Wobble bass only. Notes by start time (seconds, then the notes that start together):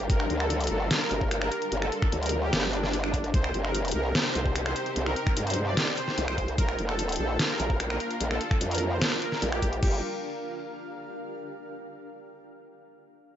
0.10 G1
0.30 D2
0.70 G1
1.11 G1
1.72 G1
2.12 D2
2.53 G1
3.34 C2
3.54 G1
3.95 C2
4.35 C2
4.96 C2
5.37 G2
6.18 C2
6.58 A#1
6.79 F1
7.19 A#1
7.60 A#1
8.20 A#1
8.61 F2
9.42 A#1
9.62 A#1
9.83 G1